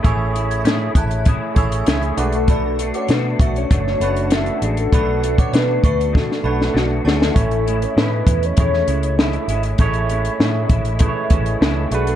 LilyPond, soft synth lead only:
\new Staff \with { instrumentName = "Soft synth lead" } { \time 4/4 \key a \major \tempo 4 = 98 r2. r8 gis'16 a'16~ | a'8. cis''16 b'8. cis''16 cis''4 e''8 gis'16 a'16~ | a'8. cis''16 b'8 b'8 a'4. gis'16 a'16~ | a'8. cis''16 b'8. cis''16 cis''4 e''8. r16 |
r2. r8 gis'16 a'16 | }